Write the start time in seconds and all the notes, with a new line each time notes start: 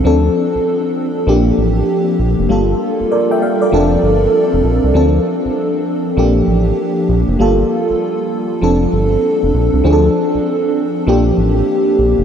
0.04 D2 F3 C4 D4 A4
0.55 A#1
1.27 A#1 F3 A#3 D4 G4
1.58 A1
2.19 A#1
2.39 F1
2.49 G1 G3 A#3 F4 A4
3.00 F1
3.12 A#4 D5
3.31 E5 G5
3.42 D5 F5
3.62 A#4 D5
3.72 F1 F3 C4 D4 A4
4.03 G1
4.53 F1
4.64 A#1
4.84 C2
4.94 D2 F3 C4 D4 A4
5.45 A#1
6.17 A#1 F3 A#3 D4 G4
6.48 A1
7.09 A#1
7.28 F1
7.39 G1 G3 A#3 F4 A4
7.90 F1
8.61 F1 F3 C4 D4 A4
8.93 G1
9.43 F1
9.54 A#1
9.73 C2
9.84 D2 F3 C4 D4 G#4
9.93 A4
10.35 A#1
11.07 A#1 F3 A#3 D4 G4
11.38 A1
11.99 A#1
12.18 F1